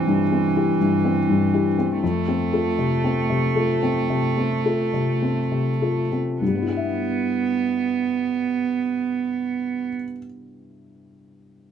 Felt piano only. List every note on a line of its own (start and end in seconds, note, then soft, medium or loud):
0.00 2.04 C2 soft
0.00 0.07 G2 soft
0.00 0.32 C4 soft
0.00 0.56 E4 soft
0.00 0.56 G4 soft
0.07 0.45 G2 soft
0.32 0.70 C4 soft
0.56 0.77 E4 soft
0.56 0.77 G4 soft
0.81 1.19 G2 soft
1.05 1.43 C4 soft
1.29 1.68 G2 soft
1.54 1.75 E4 soft
1.54 1.75 G4 soft
1.79 2.02 C4 soft
2.03 4.05 F2 soft
2.28 2.68 C4 soft
2.53 2.75 F4 soft
2.53 2.75 A4 soft
2.78 3.18 C3 soft
3.04 3.45 C4 soft
3.30 3.71 C3 soft
3.56 3.79 F4 soft
3.56 3.79 A4 soft
3.83 4.26 C4 soft
4.10 4.53 C3 soft
4.38 4.82 C4 soft
4.65 4.90 F4 soft
4.65 4.90 A4 soft
4.93 5.39 C3 soft
5.22 5.69 C4 soft
5.51 6.00 C3 soft
5.82 6.09 F4 soft
5.82 6.09 A4 soft
6.12 6.41 C4 soft
6.41 9.89 G2 soft
6.48 9.95 G3 soft
6.55 10.03 B3 soft
6.62 10.10 E4 soft
6.69 10.17 G4 soft
6.76 10.23 E5 soft